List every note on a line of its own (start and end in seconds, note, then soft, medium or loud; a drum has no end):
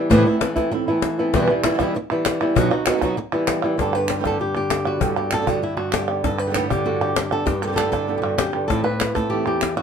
0.00 0.10 G3 medium
0.00 0.10 G3 soft
0.10 0.25 A2 medium
0.10 0.25 C3 medium
0.10 0.24 E3 medium
0.10 0.25 E3 medium
0.10 0.25 A3 medium
0.10 0.25 B3 loud
0.10 0.26 B3 medium
0.10 0.26 C4 medium
0.10 0.26 E4 medium
0.10 0.25 E4 medium
0.10 cajon bass loud
0.10 cajon slap soft
0.25 0.40 E3 medium
0.25 0.40 A3 medium
0.25 0.40 B3 medium
0.25 0.41 B3 soft
0.25 0.40 C4 soft
0.25 0.41 E4 medium
0.25 0.39 E4 medium
0.25 cajon slap soft
0.41 0.56 E3 soft
0.41 0.56 A3 soft
0.41 0.54 B3 medium
0.41 0.54 E4 medium
0.41 muted nylon-string guitar stroke medium
0.41 cajon slap loud
0.56 0.71 E3 medium
0.56 0.71 A3 medium
0.56 0.71 B3 medium
0.56 0.71 B3 soft
0.56 0.72 C4 soft
0.56 0.71 E4 medium
0.56 0.71 E4 soft
0.56 cajon bass medium
0.56 cajon slap soft
0.71 0.86 A2 medium
0.71 0.87 E3 medium
0.71 0.87 B3 medium
0.71 0.87 C4 medium
0.71 0.86 E4 medium
0.71 muted nylon-string guitar stroke medium
0.87 1.18 E3 soft
0.87 1.18 A3 medium
0.87 1.02 B3 soft
0.87 1.18 B3 medium
0.87 1.02 C4 soft
0.87 1.02 E4 soft
0.87 1.17 E4 medium
1.02 muted nylon-string guitar stroke medium
1.02 cajon slap loud
1.18 1.33 E3 soft
1.18 1.34 A3 medium
1.18 1.33 B3 soft
1.18 1.33 B3 medium
1.18 1.33 C4 soft
1.18 1.32 E4 soft
1.18 1.33 E4 medium
1.33 1.63 E2 medium
1.33 1.48 E2 medium
1.33 1.63 B2 medium
1.33 1.48 B2 medium
1.33 1.63 E3 medium
1.33 1.48 E3 medium
1.33 1.64 G3 medium
1.33 1.49 G3 medium
1.33 1.63 B3 medium
1.33 1.49 B3 medium
1.33 1.62 E4 medium
1.33 1.49 E4 loud
1.33 cajon bass loud
1.33 cajon slap soft
1.49 1.65 E3 medium
1.49 1.64 G3 medium
1.49 1.64 B3 medium
1.49 1.64 E4 medium
1.49 cajon slap soft
1.63 1.69 B2 soft
1.63 1.68 E3 soft
1.63 1.79 E3 soft
1.63 1.67 G3 soft
1.63 1.79 G3 soft
1.63 1.79 B3 medium
1.63 1.69 B3 soft
1.63 1.65 E4 medium
1.63 1.79 E4 medium
1.63 1.69 E4 medium
1.63 cajon slap loud
1.63 clap medium
1.70 1.73 B2 medium
1.70 1.73 E3 medium
1.70 1.73 G3 soft
1.70 1.74 B3 medium
1.70 1.74 E4 medium
1.74 1.77 B2 medium
1.74 1.78 E3 medium
1.74 1.78 G3 medium
1.74 1.78 B3 medium
1.74 1.78 E4 medium
1.78 1.93 E2 medium
1.78 1.93 B2 medium
1.78 1.94 E3 medium
1.78 1.94 G3 medium
1.78 1.95 G3 medium
1.78 1.94 B3 medium
1.78 1.95 B3 medium
1.78 1.94 E4 medium
1.78 1.95 E4 medium
1.78 cajon bass medium
1.78 cajon slap soft
1.94 muted nylon-string guitar stroke medium
2.11 2.41 E3 medium
2.11 2.41 G3 soft
2.11 2.41 B3 medium
2.11 2.40 E4 medium
2.25 2.55 E3 soft
2.25 2.55 G3 soft
2.25 2.56 B3 soft
2.25 2.56 E4 medium
2.25 cajon slap loud
2.25 clap medium
2.41 2.56 E3 soft
2.41 2.56 G3 medium
2.41 2.55 B3 medium
2.41 2.55 E4 medium
2.55 2.70 B2 medium
2.55 2.86 B2 medium
2.55 2.70 F#3 medium
2.55 2.86 F#3 medium
2.55 2.71 B3 medium
2.55 2.86 B3 medium
2.55 2.86 D#4 medium
2.55 2.70 D#4 medium
2.55 2.69 F#4 medium
2.55 2.86 F#4 medium
2.55 cajon bass loud
2.71 2.86 B3 medium
2.71 2.86 D#4 medium
2.71 2.85 F#4 medium
2.71 cajon slap soft
2.86 2.92 F#3 soft
2.86 2.92 B3 soft
2.86 3.02 B3 soft
2.86 2.92 D#4 soft
2.86 3.02 D#4 medium
2.86 2.89 F#4 soft
2.86 3.01 F#4 medium
2.86 cajon slap loud
2.86 clap medium
2.90 2.96 F#3 medium
2.90 2.97 B3 medium
2.90 2.97 D#4 medium
2.90 2.92 F#4 soft
2.90 2.98 F#4 medium
2.97 3.01 F#3 medium
2.97 3.01 B3 medium
2.97 3.01 D#4 medium
2.97 3.02 F#4 medium
3.02 3.16 B2 medium
3.02 3.16 F#3 medium
3.02 3.17 F#3 medium
3.02 3.17 B3 medium
3.02 3.17 D#4 medium
3.02 3.17 F#4 medium
3.02 cajon bass medium
3.02 cajon slap soft
3.17 muted nylon-string guitar stroke medium
3.33 3.63 E3 soft
3.33 3.63 G3 medium
3.33 3.63 B3 medium
3.33 3.62 E4 medium
3.47 3.77 E3 medium
3.47 3.78 G3 medium
3.47 3.78 B3 soft
3.47 3.79 E4 medium
3.47 cajon slap loud
3.47 clap medium
3.64 3.78 E3 soft
3.64 3.78 G3 soft
3.64 3.78 B3 medium
3.64 3.78 E4 medium
3.78 5.00 G2 medium
3.78 3.93 G2 medium
3.78 3.93 A2 medium
3.78 4.23 D3 soft
3.78 3.93 D3 medium
3.78 3.93 G3 medium
3.78 5.37 B3 soft
3.78 3.93 B3 medium
3.78 4.86 D4 soft
3.78 3.92 G4 medium
3.78 3.95 A4 medium
3.78 cajon bass medium
3.78 cajon slap soft
3.93 4.09 D3 soft
3.93 4.08 G3 soft
3.93 4.07 B3 soft
3.93 4.06 G4 soft
3.93 4.25 B4 medium
3.93 cajon slap soft
4.08 4.14 D3 soft
4.08 4.15 G3 soft
4.08 4.15 B3 soft
4.08 4.15 G4 soft
4.08 cajon slap medium
4.08 clap medium
4.15 4.18 A2 soft
4.15 4.18 D3 soft
4.15 4.19 G3 soft
4.15 4.19 B3 soft
4.15 4.20 G4 soft
4.19 4.23 A2 soft
4.19 4.23 D3 medium
4.19 4.24 G3 soft
4.19 4.24 B3 medium
4.19 4.24 G4 medium
4.24 4.38 G2 medium
4.24 4.38 A2 medium
4.24 4.54 D3 medium
4.24 4.39 D3 medium
4.24 4.39 G3 medium
4.24 4.39 B3 medium
4.24 4.39 G4 medium
4.24 4.40 A4 medium
4.24 cajon bass medium
4.24 cajon slap soft
4.24 clap soft
4.39 4.55 G4 medium
4.39 muted nylon-string guitar stroke soft
4.55 4.99 D3 medium
4.55 5.16 G4 medium
4.69 4.84 D3 soft
4.69 4.85 G3 soft
4.69 4.84 B3 soft
4.69 4.83 G4 medium
4.69 cajon slap loud
4.69 clap medium
4.84 5.00 D3 soft
4.84 5.00 G3 soft
4.84 5.00 B3 soft
4.84 5.47 F#4 medium
4.84 5.00 G4 soft
5.00 5.15 G2 medium
5.00 5.78 G2 medium
5.00 5.16 A2 medium
5.00 5.16 D3 medium
5.00 5.16 G3 medium
5.00 5.15 B3 medium
5.00 5.15 G4 medium
5.00 cajon bass medium
5.16 5.32 D3 soft
5.16 5.31 G3 soft
5.16 5.31 B3 soft
5.16 5.30 G4 soft
5.16 5.32 G4 medium
5.31 5.36 D3 soft
5.31 5.37 G3 soft
5.31 5.37 B3 soft
5.31 5.37 G4 soft
5.31 5.48 A4 medium
5.31 cajon slap medium
5.31 clap medium
5.37 5.40 A2 soft
5.37 5.41 D3 soft
5.37 5.41 G3 soft
5.37 5.41 B3 soft
5.37 5.42 G4 soft
5.42 5.45 A2 medium
5.42 5.45 D3 medium
5.42 5.46 G3 soft
5.42 5.46 B3 medium
5.42 5.46 G4 medium
5.46 5.61 G2 medium
5.46 5.61 A2 medium
5.46 5.61 D3 medium
5.46 6.70 D3 medium
5.46 5.61 G3 medium
5.46 5.62 B3 medium
5.46 5.63 F#4 medium
5.46 5.62 G4 medium
5.46 cajon bass medium
5.62 5.76 E4 medium
5.62 muted nylon-string guitar stroke medium
5.77 6.24 G2 medium
5.77 5.94 F#4 medium
5.92 6.08 D3 soft
5.92 6.08 G3 soft
5.92 6.08 B3 soft
5.92 6.24 G4 medium
5.92 6.07 G4 soft
5.92 cajon slap loud
5.92 clap medium
6.08 6.24 D3 soft
6.08 6.24 G3 soft
6.08 6.24 B3 soft
6.08 6.23 G4 soft
6.24 7.45 G2 medium
6.24 6.39 A4 medium
6.24 muted nylon-string guitar stroke medium
6.24 cajon bass medium
6.24 cajon slap soft
6.39 6.70 B4 loud
6.46 6.49 A2 soft
6.46 6.49 D3 soft
6.46 6.50 G3 soft
6.46 6.50 B3 soft
6.46 6.50 G4 medium
6.50 6.54 A2 medium
6.50 6.54 D3 medium
6.50 6.55 G3 medium
6.50 6.55 B3 medium
6.50 6.55 G4 medium
6.54 6.83 G2 medium
6.54 6.84 A2 medium
6.54 6.84 D3 medium
6.54 6.85 G3 medium
6.54 7.66 B3 soft
6.54 6.86 B3 medium
6.54 6.85 G4 medium
6.54 cajon slap medium
6.54 clap medium
6.70 7.00 D3 medium
6.70 7.00 G4 medium
6.70 cajon bass medium
6.84 7.14 G2 medium
6.84 7.15 A2 medium
6.84 7.14 D3 medium
6.84 7.15 G3 medium
6.84 7.15 B3 medium
6.84 7.16 F#4 medium
7.01 7.45 D3 medium
7.01 7.32 G4 medium
7.15 7.45 D4 soft
7.15 muted nylon-string guitar stroke medium
7.15 cajon slap loud
7.15 clap medium
7.30 7.47 D3 soft
7.30 7.46 G3 soft
7.30 7.46 B3 soft
7.30 7.46 G4 soft
7.30 7.46 A4 loud
7.30 clap soft
7.46 8.22 G2 medium
7.46 7.62 G4 medium
7.46 muted nylon-string guitar stroke medium
7.46 cajon bass loud
7.46 cajon slap soft
7.62 7.67 A2 soft
7.62 7.67 D3 soft
7.62 7.67 G3 soft
7.62 7.68 B3 soft
7.62 7.68 G4 medium
7.62 7.67 A4 medium
7.67 7.71 A2 soft
7.67 7.71 D3 medium
7.67 7.72 G3 medium
7.67 7.72 B3 medium
7.67 7.75 G4 medium
7.67 7.72 G4 medium
7.72 7.76 A2 medium
7.72 7.76 D3 medium
7.72 7.76 G3 medium
7.72 7.77 B3 medium
7.72 7.77 G4 medium
7.72 7.90 A4 loud
7.77 8.06 G2 medium
7.77 8.07 A2 medium
7.77 8.07 D3 medium
7.77 8.07 G3 medium
7.77 8.08 B3 medium
7.77 8.08 G4 medium
7.77 cajon slap medium
7.77 clap medium
7.92 8.69 D3 medium
7.92 8.17 A4 medium
7.92 cajon bass medium
7.92 cajon slap soft
8.07 8.37 G2 medium
8.07 8.37 A2 medium
8.07 8.38 D3 medium
8.07 8.38 G3 medium
8.07 8.38 B3 medium
8.07 8.38 G4 medium
8.18 8.21 G4 medium
8.22 8.38 G2 medium
8.22 8.37 F#4 medium
8.38 8.52 F#2 medium
8.38 8.67 G4 medium
8.38 muted nylon-string guitar stroke medium
8.38 cajon slap loud
8.38 clap medium
8.53 8.69 G2 medium
8.53 8.69 D3 soft
8.53 8.70 G3 soft
8.53 8.69 B3 soft
8.53 8.69 G4 soft
8.68 8.84 A2 medium
8.68 9.46 A2 medium
8.68 8.84 E3 medium
8.68 9.16 A3 soft
8.68 8.85 B3 medium
8.68 8.85 C4 medium
8.68 9.82 C4 soft
8.68 8.83 E4 medium
8.68 9.29 E4 soft
8.68 8.83 A4 medium
8.68 cajon bass loud
8.68 cajon slap soft
8.84 8.99 B3 soft
8.84 8.99 C4 soft
8.84 8.99 E4 soft
8.84 9.15 B4 medium
8.99 muted nylon-string guitar stroke medium
8.99 cajon slap medium
8.99 clap medium
9.15 9.82 A3 medium
9.15 9.31 B3 soft
9.15 9.31 C4 soft
9.15 9.30 E4 soft
9.15 9.62 A4 medium
9.15 cajon bass medium
9.15 cajon slap soft
9.30 9.46 A2 medium
9.30 9.46 E3 medium
9.30 9.46 B3 medium
9.30 9.46 C4 medium
9.30 9.45 E4 medium
9.30 9.46 G4 loud
9.46 9.82 E2 medium
9.46 9.62 B3 soft
9.46 9.61 C4 soft
9.46 9.61 E4 soft
9.46 9.77 G4 medium
9.61 muted nylon-string guitar stroke medium
9.61 cajon slap loud
9.61 clap medium
9.77 9.82 B3 soft
9.77 9.82 C4 soft
9.77 9.82 E4 soft
9.77 9.82 F#4 medium
9.77 clap soft